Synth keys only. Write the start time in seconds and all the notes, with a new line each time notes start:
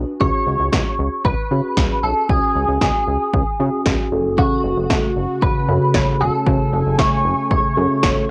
Already playing: D4 F#4 B4
0.21 C#4 F#4 G#4
1.51 C#4 F#4 G#4
2.29 C#4 F#4 G#4
3.60 C#4 F#4 G#4
4.12 C#4 F#4 A4
5.68 C#4 F#4 A4
6.47 C#4 F#4 A4
7.77 C#4 F#4 A4